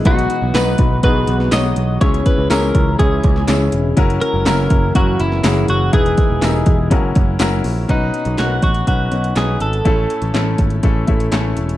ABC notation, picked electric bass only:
X:1
M:4/4
L:1/16
Q:1/4=122
K:F#mix
V:1 name="Picked electric bass" clef=bass
B,,,2 z B,,, B,,,2 B,,,2 B,,,2 B,,,2 B,,,2 B,,,2 | C,,2 z C,, C,,2 C,,2 C,,2 C,,2 C,,2 E,,,2 | F,,,2 z F,,, F,,,2 F,,,2 F,,,2 F,,,2 F,,,2 F,,,2 | E,,,2 z E,,, E,,,2 E,,,2 F,,,2 F,,,2 F,,,2 A,,,2 |
[K:Bmix] B,,,2 z B,,, B,,,2 A,,,2 B,,,2 B,,,2 B,,,2 G,,,2 | A,,,2 z A,,, A,,,2 G,,,2 A,,,2 A,,,2 A,,,2 E,,,2 |]